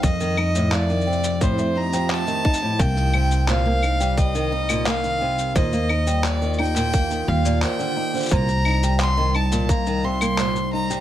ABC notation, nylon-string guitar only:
X:1
M:4/4
L:1/16
Q:1/4=87
K:Cdor
V:1 name="Nylon-string guitar" clef=bass
z E, E A,, A, E, C,2 A,, A, E F,2 E, E A,, | B, E, C,2 B,, B, E G,2 E, E B,, B, E, C,2 | B,, B, E G,2 E, E B,, B, E, G, B,, B, D, E D, | B,, z E G,2 E, E B,, B, E, C, B, B,, z E G, |]